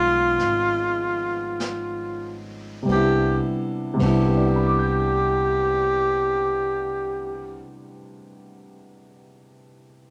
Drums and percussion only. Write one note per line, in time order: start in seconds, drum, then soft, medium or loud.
0.39 brush sweep soft
0.39 snare soft
1.60 brush sweep soft
1.60 snare soft
1.60 hi-hat pedal soft
2.88 kick soft
2.88 ride soft
3.99 kick soft
3.99 ride soft